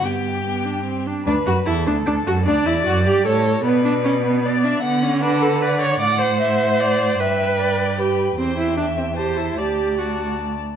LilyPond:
<<
  \new Staff \with { instrumentName = "Violin" } { \time 3/4 \key g \major \tempo 4 = 151 g''2~ g''8 r8 | \key d \major d'8 fis'8 e'8 d'8 d'8 fis'8 | d'8 e'8 fis'8 g'8 a'4 | d''2 d''8 e''8 |
fis''4 fis''4 fis''4 | \key d \mixolydian fis''2. | g''2 g''4 | g''2 a''4 |
a''4 a''4. r8 | }
  \new Staff \with { instrumentName = "Violin" } { \time 3/4 \key g \major g'2~ g'8 r8 | \key d \major b'4 a'2 | d''2 cis''4 | b'2 d''4 |
fis''4 b'4 d''4 | \key d \mixolydian fis''4 e''4 d''4 | e''4 d''4 b'4 | c''4 e''4 c''4 |
d''2~ d''8 r8 | }
  \new Staff \with { instrumentName = "Viola" } { \time 3/4 \key g \major b4 b8 d'8 c'8 d'8 | \key d \major d'8 fis'8 e'8 d'8 d'8 fis'8 | d'8 e'8 fis'8 g'8 a'4 | b8 d'8 cis'8 b8 b8 d'8 |
b8 cis'8 d'8 a'8 b'8 cis''8 | \key d \mixolydian d''8 c''2~ c''8 | b'2 g'8 r8 | c'8 e'8 d'8 c'8 g'8 e'8 |
g'4 fis'4 r4 | }
  \new Staff \with { instrumentName = "Cello" } { \clef bass \time 3/4 \key g \major g,2~ g,8 r8 | \key d \major d,8 fis,8 e,8 d,8 d,8 fis,8 | d,8 e,8 fis,8 g,8 a,4 | b,2. |
d2. | \key d \mixolydian a,2. | g,2. | e,2. |
d,2~ d,8 r8 | }
>>